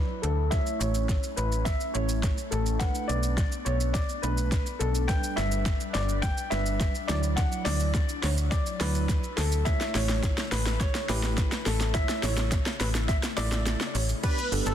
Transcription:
Already playing: F#3 D4 E4 B4
0.22 D2 A4, closed hi-hat
0.51 A3 C#4 E4 C#5 E5, kick, snare, closed hi-hat, shaker
0.66 shaker
0.79 A1 C#5, closed hi-hat, shaker
0.95 shaker
1.09 kick, snare, closed hi-hat, shaker
1.23 shaker
1.36 A1 B4, closed hi-hat, shaker
1.52 shaker
1.65 E5, kick, snare, closed hi-hat, shaker
1.80 shaker
1.94 A1 A3 E4 C#5, closed hi-hat, shaker
2.09 shaker
2.23 kick, snare, closed hi-hat, shaker
2.38 shaker
2.51 A1 A4, closed hi-hat, shaker
2.66 shaker
2.79 A3 B3 D4 B4 F#5, kick, snare, closed hi-hat, shaker
2.95 shaker
3.08 B1 D5, closed hi-hat, shaker
3.23 shaker
3.37 kick, snare, closed hi-hat, shaker
3.52 shaker
3.65 B1 C#5, closed hi-hat, shaker
3.81 shaker
3.93 D5, kick, snare, closed hi-hat, shaker
4.09 shaker
4.22 B1 A3 D4 B4, closed hi-hat, shaker
4.38 shaker
4.52 kick, snare, closed hi-hat, shaker
4.66 shaker
4.79 B1 A4, closed hi-hat, shaker
4.95 shaker
5.08 G3 D4 B4 G5, kick, snare, closed hi-hat, shaker
5.24 shaker
5.36 G1 E5, snare, closed hi-hat, shaker
5.52 shaker
5.66 kick, snare, closed hi-hat, shaker
5.80 shaker
5.93 G1 D5, snare, closed hi-hat, shaker
6.09 shaker
6.22 G5, kick, snare, closed hi-hat, shaker
6.38 shaker
6.50 G1 G3 D4 B4 E5, snare, closed hi-hat, shaker
6.66 shaker
6.80 kick, snare, closed hi-hat, shaker
6.95 shaker
7.08 D2 F#3 E4 D5, snare, closed hi-hat, shaker
7.23 shaker
7.36 F#5, kick, snare, closed hi-hat, shaker
7.52 shaker
7.65 D2 D5, snare, open hi-hat, shaker
7.80 shaker
7.95 kick, snare, closed hi-hat, shaker
8.09 shaker
8.22 D2 C#5, snare, open hi-hat, shaker
8.38 shaker
8.51 D5, kick, snare, closed hi-hat, shaker
8.66 shaker
8.79 D2 F#3 E4 B4 D5, snare, open hi-hat, shaker
8.95 shaker
9.09 kick, snare, closed hi-hat, shaker
9.24 shaker
9.36 D2 A4, snare, open hi-hat, shaker
9.52 shaker
9.65 C#3 A3 E4 C#5 E5, kick, snare, closed hi-hat, shaker
9.81 snare, shaker
9.94 A1 C#5, snare, open hi-hat, shaker
10.09 snare, shaker
10.23 kick, snare, closed hi-hat, shaker
10.38 snare, shaker
10.51 A1 B4, snare, open hi-hat, shaker
10.66 snare, shaker
10.80 C#5, kick, snare, closed hi-hat, shaker
10.95 snare, shaker
11.08 A1 A3 E4 G4 B4, snare, open hi-hat, shaker
11.23 snare, shaker
11.38 kick, snare, closed hi-hat, shaker
11.52 snare, shaker
11.65 A1 A4, snare, open hi-hat, shaker
11.81 snare, shaker
11.94 A3 E4 C#5 E5, kick, snare, closed hi-hat, shaker
12.09 snare, shaker
12.22 A1 C#5, snare, open hi-hat, shaker
12.37 snare, shaker
12.52 kick, snare, closed hi-hat, shaker
12.66 snare, shaker
12.80 A1 B4, snare, open hi-hat, shaker
12.95 snare, shaker
13.08 E5, kick, snare, closed hi-hat, shaker
13.23 snare, shaker
13.37 A1 A3 E4 D5 E5, snare, open hi-hat, shaker
13.52 snare, shaker
13.66 snare, closed hi-hat, shaker
13.81 snare, shaker
13.86 D5
13.94 A1 C#5, open hi-hat, shaker
14.09 shaker
14.23 G3 B3 D4 G4 B4 D5, kick, closed hi-hat, crash, shaker
14.38 shaker
14.52 G1 B3 D4 G4 A4, open hi-hat, shaker
14.66 G1 A4, shaker

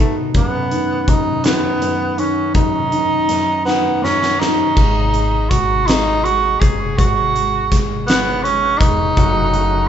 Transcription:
Already playing: B2 G#4
0.00 D#3 A3
0.34 F#2 B3, kick, closed hi-hat
0.71 D#3, closed hi-hat
1.07 F#2 D#4, kick, closed hi-hat
1.44 D#3 B3, snare, closed hi-hat
1.81 F#2, closed hi-hat
2.17 D#3 C#4, closed hi-hat
2.54 F#2 D#4, kick, closed hi-hat
2.92 D#3, closed hi-hat
3.28 F#2, snare, closed hi-hat
3.65 D#3 B3, snare
4.02 F#2 C#4, snare
4.23 snare
4.39 D#3 D#4, snare
4.76 G#1 G#3, kick, crash
5.13 G#3, closed hi-hat
5.50 G#3 F#4, kick, closed hi-hat
5.87 G#3 D#4, snare, closed hi-hat
6.24 G#3 F#4, closed hi-hat
6.60 F#1 G#3 G#4, kick, closed hi-hat
6.97 G#1 G#3 F#4, kick, closed hi-hat
7.35 G#3, closed hi-hat
7.72 G#3, kick, snare, closed hi-hat
8.06 G#3 B3, snare, closed hi-hat
8.43 G#3 C#4, closed hi-hat
8.78 E1 G#3 D#4, kick, closed hi-hat
9.17 F#1 C#3 F#3 A3 F#4, kick, closed hi-hat
9.54 F#3, closed hi-hat

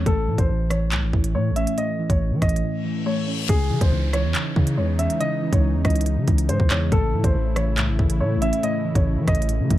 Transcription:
0.06 A1 A2 A4, kick, closed hi-hat
0.28 A2 E3
0.38 A1 C5, kick, closed hi-hat
0.49 A1 A2
0.70 E3 C#5, cross-stick, closed hi-hat
0.92 C2 A2, clap, closed hi-hat
1.03 A1
1.13 A1 E3, kick
1.24 closed hi-hat
1.35 A2 A3 C#5
1.51 A1
1.56 C#4 E5, closed hi-hat
1.67 closed hi-hat
1.78 A2 D#5, closed hi-hat
1.99 E3
2.10 A1 C#5, kick, closed hi-hat
2.21 A2
2.31 E3
2.42 A1 E3 D#5, kick, cross-stick, closed hi-hat
2.49 closed hi-hat
2.56 closed hi-hat
2.63 A2, reverse cymbal
2.85 E3
3.06 A3 C#5
3.28 C#4
3.49 C#2 C#3 E3 D#4 G#4, kick, closed hi-hat, downlifter
3.71 C#3 E3
3.81 C#2 C5, kick, closed hi-hat
3.92 C#2 C#3
4.13 E3 C#5, cross-stick, closed hi-hat
4.24 E2
4.35 C#3, clap, closed hi-hat
4.56 C#3 E3, kick
4.67 closed hi-hat
4.78 E2 G#3 C#5
4.99 C#4 E5, closed hi-hat
5.10 closed hi-hat
5.20 C#3 D#5, closed hi-hat
5.42 E3
5.53 C#2 C#5, kick, closed hi-hat
5.63 C#3
5.74 E2
5.85 C#2 E3 D#5, kick, cross-stick, closed hi-hat
5.90 closed hi-hat
5.96 closed hi-hat
6.01 closed hi-hat
6.06 C#3, closed hi-hat
6.17 C#3
6.28 C#2 E3, kick, closed hi-hat
6.38 closed hi-hat
6.49 G#2 G#3 C5, closed hi-hat
6.60 C#2, kick
6.70 E2 C#4 C#5, clap, closed hi-hat
6.92 A1 A2 A3 E4 A4, kick, closed hi-hat
7.13 A2 E3
7.24 A1 C5, kick, closed hi-hat
7.35 A1 A2
7.56 E3 C#5, cross-stick, closed hi-hat
7.77 C2 A2, clap, closed hi-hat
7.88 A1
7.99 A1 E3, kick
8.10 closed hi-hat
8.20 A2 A3 C#5
8.37 A1
8.42 C#4 E5, closed hi-hat
8.53 closed hi-hat
8.63 A2 D#5, closed hi-hat
8.85 E3
8.95 A1 C#5, kick, closed hi-hat
9.06 A2
9.17 E3
9.28 A1 E3 D#5, kick, cross-stick, closed hi-hat
9.35 closed hi-hat
9.42 closed hi-hat
9.49 A2, closed hi-hat
9.60 C#3
9.70 A1 E3, kick, closed hi-hat

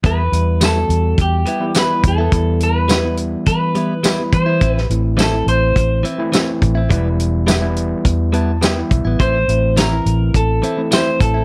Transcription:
0.04 E2 G3 B3 E4 B4, kick, closed hi-hat
0.32 E2 E3 G3 B3 E4, closed hi-hat
0.61 G3 B3 E4 A4, snare, closed hi-hat, tambourine
0.74 E3 G3 B3 F#4
0.89 E2, closed hi-hat
1.18 E2 G4, kick, closed hi-hat
1.46 G3 B3 E4, closed hi-hat
1.60 E3 G3 B3 E4
1.75 E3 G3 B3 E4, snare, closed hi-hat, tambourine
1.79 B4
2.04 E2, kick, closed hi-hat
2.08 A4
2.18 B3 E4
2.32 E2 E3 G3 B3 E4, kick, closed hi-hat
2.60 B4, closed hi-hat
2.88 G3 B3 E4, snare, closed hi-hat, tambourine
3.04 E3 G3 B3 E4
3.17 closed hi-hat
3.46 E3 B4, kick, closed hi-hat
3.75 G3 B3 E4, closed hi-hat
4.03 G3 B3 E4, snare, closed hi-hat, tambourine
4.20 E3 G3 B3 E4
4.33 E3 C5, kick, closed hi-hat
4.46 B3 E4
4.61 A1 E3 C4 E4, kick, closed hi-hat
4.72 B4
4.78 snare
4.90 A1 E3 A3 C4 E4, closed hi-hat
5.17 E3 C4 E4 A4, snare, closed hi-hat, tambourine
5.33 E3 A3 C4 E4
5.47 A1 C5, closed hi-hat
5.76 A1, kick, closed hi-hat
6.03 E3 C4 E4, closed hi-hat
6.18 E3 A3 C4 E4
6.32 E3 A3 C4 E4, snare, closed hi-hat, tambourine
6.62 A1, kick, closed hi-hat
6.75 C4 E4
6.89 E1 E3 G3 B3 E4, kick, closed hi-hat
7.20 closed hi-hat
7.47 G3 B3 E4, snare, closed hi-hat, tambourine
7.61 E3 G3 B3 E4
7.76 closed hi-hat
8.05 E2, kick, closed hi-hat
8.33 G3 B3 E4 A5, closed hi-hat
8.62 G3 B3 E4 G5, snare, closed hi-hat, tambourine
8.76 E3 G3 B3 E4
8.91 B1 E5, kick, closed hi-hat
9.05 A1 B3 E4
9.19 A1 E3 C4 E4 C5, kick, closed hi-hat
9.48 A1 E3 A3 C4 E4, closed hi-hat
9.77 E3 C4 E4 A#4, snare, closed hi-hat, tambourine
9.91 E3 C4 E4
10.06 A1, closed hi-hat
10.34 A1 A4, kick, closed hi-hat
10.62 E3 C4 E4, closed hi-hat
10.77 E3 A3 C4 E4
10.91 E3 A3 C4 E4 C5, snare, closed hi-hat, tambourine
11.20 A1 A4, kick, closed hi-hat
11.34 C4 E4

